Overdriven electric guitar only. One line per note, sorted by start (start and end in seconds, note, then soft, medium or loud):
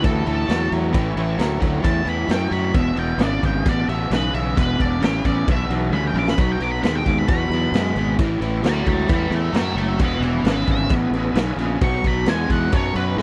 0.02 0.23 A2 medium
0.02 0.24 E3 medium
0.25 0.46 A2 medium
0.25 0.46 E3 medium
0.47 0.69 A2 medium
0.47 0.69 F#3 loud
0.72 0.91 A2 medium
0.72 0.92 F#3 medium
0.92 1.14 A2 medium
0.92 1.14 E3 loud
1.17 1.37 A2 medium
1.17 1.38 E3 medium
1.38 1.59 A2 medium
1.38 1.59 F#3 loud
1.60 1.81 A2 medium
1.60 1.82 F#3 medium
1.83 2.03 A2 medium
1.83 2.03 E3 medium
2.04 2.26 A2 medium
2.04 2.26 E3 medium
2.28 2.49 A2 medium
2.28 2.50 F#3 loud
2.51 2.72 A2 medium
2.51 2.72 F#3 medium
2.74 2.95 E2 medium
2.74 2.96 B2 loud
2.96 3.18 E2 medium
2.96 3.18 B2 medium
3.19 3.40 E2 medium
3.19 3.41 C#3 loud
3.42 3.63 E2 medium
3.42 3.63 C#3 medium
3.65 3.86 E2 medium
3.65 3.87 B2 medium
3.89 4.09 E2 medium
3.89 4.09 B2 medium
4.13 4.33 E2 medium
4.13 4.33 C#3 loud
4.34 4.54 E2 medium
4.34 4.54 C#3 medium
4.55 4.76 E2 medium
4.55 4.77 B2 loud
4.79 4.99 E2 medium
4.79 4.99 B2 medium
5.01 5.22 E2 medium
5.01 5.22 C#3 loud
5.25 5.45 E2 medium
5.25 5.46 C#3 medium
5.48 5.68 E2 medium
5.48 5.68 B2 loud
5.70 5.90 E2 medium
5.70 5.91 B2 medium
5.92 6.13 E2 loud
5.92 6.13 C#3 medium
6.15 6.36 E2 medium
6.15 6.36 C#3 medium
6.39 6.59 B2 medium
6.39 6.59 F#3 medium
6.62 6.81 B2 medium
6.62 6.82 F#3 medium
6.83 7.03 B2 medium
6.83 7.04 G#3 loud
7.07 7.27 B2 medium
7.07 7.27 G#3 medium
7.28 7.49 B2 medium
7.28 7.49 F#3 medium
7.53 7.73 B2 medium
7.53 7.73 F#3 medium
7.75 7.95 B2 medium
7.75 7.95 G#3 loud
7.97 8.17 B2 medium
7.97 8.17 G#3 medium
8.19 8.39 A2 medium
8.19 8.39 E3 medium
8.41 8.62 A2 medium
8.41 8.62 E3 medium
8.63 8.84 A2 medium
8.63 8.84 F#3 medium
8.85 9.06 A2 medium
8.85 9.07 F#3 medium
9.07 9.29 A2 medium
9.07 9.29 E3 medium
9.30 9.51 A2 medium
9.30 9.52 E3 medium
9.52 9.74 A2 loud
9.52 9.74 F#3 loud
9.78 9.98 A2 medium
9.78 9.98 F#3 medium
10.00 10.21 E2 medium
10.00 10.21 B2 loud
10.23 10.43 E2 medium
10.23 10.44 B2 medium
10.44 10.65 E2 loud
10.44 10.66 C#3 loud
10.66 10.88 E2 medium
10.66 10.88 C#3 medium
10.90 11.11 E2 medium
10.90 11.12 B2 loud
11.15 11.35 E2 medium
11.15 11.35 B2 medium
11.36 11.57 E2 medium
11.36 11.57 C#3 medium
11.58 11.79 E2 medium
11.58 11.80 C#3 medium
11.81 12.02 B2 loud
11.81 12.02 F#3 loud
12.05 12.25 B2 medium
12.05 12.25 F#3 medium
12.27 12.48 B2 loud
12.27 12.48 G#3 loud
12.49 12.70 B2 medium
12.49 12.71 G#3 medium
12.73 12.94 B2 medium
12.73 12.94 F#3 loud
12.96 13.16 B2 medium
12.96 13.17 F#3 medium
13.18 13.22 B2 medium
13.18 13.22 G#3 loud